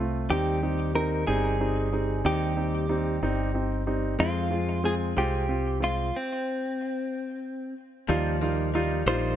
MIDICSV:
0, 0, Header, 1, 5, 480
1, 0, Start_track
1, 0, Key_signature, -3, "minor"
1, 0, Tempo, 647948
1, 230, Time_signature, 6, 3, 24, 8
1, 6934, End_track
2, 0, Start_track
2, 0, Title_t, "Clean electric guitar"
2, 0, Program_c, 0, 27
2, 225, Note_on_c, 0, 67, 71
2, 705, Note_off_c, 0, 67, 0
2, 708, Note_on_c, 0, 70, 72
2, 940, Note_off_c, 0, 70, 0
2, 943, Note_on_c, 0, 68, 74
2, 1672, Note_off_c, 0, 68, 0
2, 1675, Note_on_c, 0, 67, 62
2, 2843, Note_off_c, 0, 67, 0
2, 3112, Note_on_c, 0, 65, 78
2, 3593, Note_off_c, 0, 65, 0
2, 3596, Note_on_c, 0, 68, 71
2, 3660, Note_off_c, 0, 68, 0
2, 3838, Note_on_c, 0, 67, 69
2, 4285, Note_off_c, 0, 67, 0
2, 4325, Note_on_c, 0, 65, 75
2, 4565, Note_off_c, 0, 65, 0
2, 4566, Note_on_c, 0, 60, 69
2, 5729, Note_off_c, 0, 60, 0
2, 6724, Note_on_c, 0, 72, 90
2, 6934, Note_off_c, 0, 72, 0
2, 6934, End_track
3, 0, Start_track
3, 0, Title_t, "Grand piano"
3, 0, Program_c, 1, 0
3, 0, Note_on_c, 1, 57, 57
3, 0, Note_on_c, 1, 60, 42
3, 0, Note_on_c, 1, 65, 57
3, 184, Note_off_c, 1, 57, 0
3, 185, Note_off_c, 1, 60, 0
3, 186, Note_off_c, 1, 65, 0
3, 228, Note_on_c, 1, 55, 68
3, 229, Note_on_c, 1, 60, 60
3, 232, Note_on_c, 1, 63, 70
3, 422, Note_off_c, 1, 55, 0
3, 423, Note_off_c, 1, 60, 0
3, 425, Note_off_c, 1, 63, 0
3, 462, Note_on_c, 1, 55, 57
3, 466, Note_on_c, 1, 60, 48
3, 467, Note_on_c, 1, 63, 60
3, 659, Note_off_c, 1, 55, 0
3, 662, Note_off_c, 1, 60, 0
3, 662, Note_off_c, 1, 63, 0
3, 698, Note_on_c, 1, 55, 58
3, 701, Note_on_c, 1, 60, 56
3, 705, Note_on_c, 1, 63, 69
3, 898, Note_off_c, 1, 55, 0
3, 899, Note_off_c, 1, 60, 0
3, 901, Note_off_c, 1, 63, 0
3, 943, Note_on_c, 1, 55, 71
3, 945, Note_on_c, 1, 60, 65
3, 945, Note_on_c, 1, 63, 77
3, 1140, Note_off_c, 1, 55, 0
3, 1141, Note_off_c, 1, 60, 0
3, 1141, Note_off_c, 1, 63, 0
3, 1183, Note_on_c, 1, 55, 61
3, 1186, Note_on_c, 1, 60, 56
3, 1190, Note_on_c, 1, 63, 65
3, 1380, Note_off_c, 1, 55, 0
3, 1382, Note_off_c, 1, 60, 0
3, 1384, Note_off_c, 1, 63, 0
3, 1425, Note_on_c, 1, 55, 52
3, 1425, Note_on_c, 1, 60, 51
3, 1430, Note_on_c, 1, 63, 58
3, 1621, Note_off_c, 1, 55, 0
3, 1621, Note_off_c, 1, 60, 0
3, 1624, Note_off_c, 1, 63, 0
3, 1659, Note_on_c, 1, 55, 59
3, 1663, Note_on_c, 1, 60, 60
3, 1666, Note_on_c, 1, 63, 79
3, 1858, Note_off_c, 1, 55, 0
3, 1860, Note_off_c, 1, 60, 0
3, 1862, Note_off_c, 1, 63, 0
3, 1897, Note_on_c, 1, 55, 48
3, 1898, Note_on_c, 1, 60, 48
3, 1903, Note_on_c, 1, 63, 58
3, 2097, Note_off_c, 1, 55, 0
3, 2098, Note_off_c, 1, 60, 0
3, 2101, Note_off_c, 1, 63, 0
3, 2143, Note_on_c, 1, 63, 67
3, 2144, Note_on_c, 1, 55, 65
3, 2146, Note_on_c, 1, 60, 55
3, 2340, Note_off_c, 1, 63, 0
3, 2341, Note_off_c, 1, 55, 0
3, 2342, Note_off_c, 1, 60, 0
3, 2389, Note_on_c, 1, 55, 69
3, 2391, Note_on_c, 1, 60, 62
3, 2391, Note_on_c, 1, 63, 80
3, 2584, Note_off_c, 1, 55, 0
3, 2584, Note_off_c, 1, 60, 0
3, 2585, Note_off_c, 1, 63, 0
3, 2623, Note_on_c, 1, 60, 55
3, 2630, Note_on_c, 1, 63, 57
3, 2821, Note_off_c, 1, 60, 0
3, 2824, Note_off_c, 1, 63, 0
3, 2864, Note_on_c, 1, 55, 57
3, 2866, Note_on_c, 1, 60, 53
3, 2868, Note_on_c, 1, 63, 64
3, 3061, Note_off_c, 1, 55, 0
3, 3062, Note_off_c, 1, 60, 0
3, 3063, Note_off_c, 1, 63, 0
3, 3101, Note_on_c, 1, 56, 67
3, 3102, Note_on_c, 1, 60, 68
3, 3106, Note_on_c, 1, 65, 71
3, 3300, Note_off_c, 1, 56, 0
3, 3300, Note_off_c, 1, 60, 0
3, 3302, Note_off_c, 1, 65, 0
3, 3338, Note_on_c, 1, 56, 57
3, 3338, Note_on_c, 1, 60, 49
3, 3342, Note_on_c, 1, 65, 60
3, 3538, Note_off_c, 1, 56, 0
3, 3538, Note_off_c, 1, 60, 0
3, 3540, Note_off_c, 1, 65, 0
3, 3583, Note_on_c, 1, 56, 70
3, 3584, Note_on_c, 1, 60, 61
3, 3585, Note_on_c, 1, 65, 67
3, 3781, Note_off_c, 1, 56, 0
3, 3781, Note_off_c, 1, 60, 0
3, 3782, Note_off_c, 1, 65, 0
3, 3826, Note_on_c, 1, 56, 72
3, 3829, Note_on_c, 1, 60, 68
3, 3831, Note_on_c, 1, 65, 86
3, 4022, Note_off_c, 1, 56, 0
3, 4023, Note_off_c, 1, 60, 0
3, 4025, Note_off_c, 1, 65, 0
3, 4065, Note_on_c, 1, 60, 54
3, 4068, Note_on_c, 1, 65, 59
3, 4262, Note_off_c, 1, 60, 0
3, 4263, Note_off_c, 1, 65, 0
3, 4298, Note_on_c, 1, 56, 49
3, 4298, Note_on_c, 1, 60, 50
3, 4302, Note_on_c, 1, 65, 57
3, 4498, Note_off_c, 1, 56, 0
3, 4498, Note_off_c, 1, 60, 0
3, 4500, Note_off_c, 1, 65, 0
3, 5989, Note_on_c, 1, 55, 86
3, 5995, Note_on_c, 1, 63, 71
3, 5997, Note_on_c, 1, 65, 88
3, 6183, Note_off_c, 1, 55, 0
3, 6186, Note_off_c, 1, 63, 0
3, 6187, Note_off_c, 1, 65, 0
3, 6238, Note_on_c, 1, 55, 64
3, 6239, Note_on_c, 1, 63, 63
3, 6241, Note_on_c, 1, 65, 75
3, 6428, Note_off_c, 1, 55, 0
3, 6429, Note_off_c, 1, 63, 0
3, 6429, Note_off_c, 1, 65, 0
3, 6481, Note_on_c, 1, 63, 72
3, 6481, Note_on_c, 1, 65, 86
3, 6482, Note_on_c, 1, 55, 79
3, 6669, Note_off_c, 1, 63, 0
3, 6669, Note_off_c, 1, 65, 0
3, 6670, Note_off_c, 1, 55, 0
3, 6718, Note_on_c, 1, 55, 87
3, 6720, Note_on_c, 1, 63, 78
3, 6724, Note_on_c, 1, 65, 93
3, 6908, Note_off_c, 1, 55, 0
3, 6909, Note_off_c, 1, 63, 0
3, 6911, Note_off_c, 1, 65, 0
3, 6934, End_track
4, 0, Start_track
4, 0, Title_t, "Clean electric guitar"
4, 0, Program_c, 2, 27
4, 5991, Note_on_c, 2, 53, 81
4, 6233, Note_on_c, 2, 58, 59
4, 6473, Note_on_c, 2, 63, 60
4, 6710, Note_off_c, 2, 58, 0
4, 6713, Note_on_c, 2, 58, 57
4, 6934, Note_off_c, 2, 53, 0
4, 6934, Note_off_c, 2, 58, 0
4, 6934, Note_off_c, 2, 63, 0
4, 6934, End_track
5, 0, Start_track
5, 0, Title_t, "Fretless electric bass"
5, 0, Program_c, 3, 35
5, 0, Note_on_c, 3, 36, 52
5, 198, Note_off_c, 3, 36, 0
5, 221, Note_on_c, 3, 39, 75
5, 916, Note_off_c, 3, 39, 0
5, 945, Note_on_c, 3, 31, 60
5, 1638, Note_off_c, 3, 31, 0
5, 1663, Note_on_c, 3, 39, 90
5, 2357, Note_off_c, 3, 39, 0
5, 2385, Note_on_c, 3, 31, 64
5, 3079, Note_off_c, 3, 31, 0
5, 3106, Note_on_c, 3, 41, 78
5, 3799, Note_off_c, 3, 41, 0
5, 3827, Note_on_c, 3, 36, 67
5, 4520, Note_off_c, 3, 36, 0
5, 5991, Note_on_c, 3, 39, 96
5, 6681, Note_off_c, 3, 39, 0
5, 6709, Note_on_c, 3, 34, 75
5, 6934, Note_off_c, 3, 34, 0
5, 6934, End_track
0, 0, End_of_file